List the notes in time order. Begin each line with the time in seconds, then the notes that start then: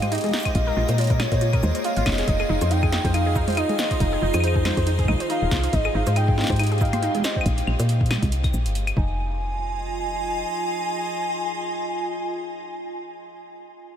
Already playing: G#2 G#3 G4 D#5 F5
0.02 C5, closed hi-hat, low conga, claves
0.12 D#4 D#5, closed hi-hat
0.15 closed hi-hat
0.18 closed hi-hat
0.21 closed hi-hat
0.24 G#4, closed hi-hat, low conga
0.26 low conga
0.29 closed hi-hat, low conga
0.31 D#4, snare, low conga, shaker
0.36 shaker
0.40 shaker
0.42 C5, kick, closed hi-hat, claves, shaker
0.55 A#1 A#3 F4 G#4 C#5 D#5, kick, closed hi-hat
0.67 A#4
0.77 A#1 F4
0.89 A#2 C5, closed hi-hat, shaker
0.98 F4 C#5, closed hi-hat
1.01 closed hi-hat
1.04 closed hi-hat
1.07 closed hi-hat
1.10 A#4 D#5, kick, closed hi-hat
1.20 F4 C#5, snare, low conga, claves
1.32 A#2 C5, kick, closed hi-hat
1.41 F4, closed hi-hat
1.53 A#4, kick, closed hi-hat, claves
1.63 D#2 C5, low conga, shaker
1.75 C5, closed hi-hat
1.84 F4 F5, closed hi-hat
1.96 G#1 F4, closed hi-hat
2.06 F1 F4 D#5, kick, snare, claves
2.09 snare
2.12 snare
2.15 snare
2.18 G#4, snare, closed hi-hat
2.21 snare
2.23 snare
2.25 F1 D#4 F4, kick, snare, closed hi-hat
2.40 G#4, claves
2.49 F1 D#4
2.61 F2 C5, closed hi-hat, shaker
2.71 D#4 G5, closed hi-hat
2.83 G#4, kick, claves
2.92 D#4, snare
3.04 F2 C5, kick, closed hi-hat
3.14 D#4 F5, closed hi-hat, claves
3.26 G#4
3.36 D#4, kick, shaker
3.48 C5, closed hi-hat, low conga
3.50 closed hi-hat
3.52 closed hi-hat
3.55 D#5, closed hi-hat
3.57 D#4, closed hi-hat, claves
3.69 G#4, closed hi-hat, low conga
3.79 C5 D#5, snare, shaker
3.91 C5, kick, closed hi-hat
4.00 F1 D#4, kick, closed hi-hat
4.12 G#4
4.22 F1 D#4
4.34 F2 C5, closed hi-hat, claves, shaker
4.40 D#4 C5, closed hi-hat, claves
4.48 claves
4.56 G#4, kick
4.65 D#4 C5, snare, low conga, claves
4.68 low conga
4.71 low conga
4.74 F2 C5, kick, closed hi-hat, low conga
4.87 D#4, closed hi-hat
4.99 G#4, kick, closed hi-hat
5.05 A#1 D#4, kick, low conga, claves
5.12 kick
5.20 C5, closed hi-hat
5.30 D#4 F5, closed hi-hat
5.42 D#1 G#4
5.51 C2 C5, kick, snare
5.64 C5, closed hi-hat
5.73 G#1 G#3 D#4 G4 C5 D#5, kick, closed hi-hat
5.85 G#4, claves
5.94 G#1 D#4 F5
6.07 G#2 C5, closed hi-hat, shaker
6.16 D#4 G5, closed hi-hat, claves
6.28 G#4, kick
6.38 D#4 G5, snare
6.41 snare
6.44 snare
6.47 G#2 C5, kick, snare, closed hi-hat
6.52 closed hi-hat
6.56 D#4, closed hi-hat
6.59 closed hi-hat, claves
6.63 closed hi-hat
6.67 closed hi-hat
6.71 G#4, closed hi-hat
6.78 D#4 F5, kick, closed hi-hat, shaker
6.85 closed hi-hat
6.93 C5, closed hi-hat, low conga, claves
7.02 D#4, closed hi-hat
7.15 G#4, closed hi-hat, low conga
7.17 low conga
7.19 low conga
7.22 C5 D#5, snare, low conga, shaker
7.36 C5, kick
7.41 claves
7.46 A#1, kick, closed hi-hat
7.58 closed hi-hat
7.67 A#1, claves
7.79 A#2, closed hi-hat, shaker
7.89 closed hi-hat
8.01 kick
8.06 closed hi-hat
8.11 snare, low conga, claves
8.18 low conga
8.22 C2, kick, closed hi-hat, low conga
8.32 closed hi-hat
8.44 kick, closed hi-hat, claves
8.54 A#1, shaker
8.66 G1, closed hi-hat
8.75 closed hi-hat
8.87 closed hi-hat, claves
8.97 F1 D#4 F4 D#5 G#5, kick